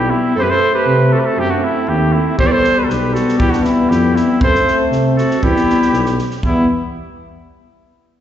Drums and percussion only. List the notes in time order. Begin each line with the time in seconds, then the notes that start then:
2.39 kick
2.64 snare
2.90 snare
3.15 snare
3.28 snare
3.40 kick
3.53 snare
3.65 snare
3.91 snare
4.16 snare
4.41 kick
4.55 snare
4.68 snare
4.92 snare
5.18 snare
5.31 snare
5.43 kick
5.56 snare
5.70 snare
5.82 snare
5.93 snare
6.06 snare
6.19 snare
6.31 snare
6.43 kick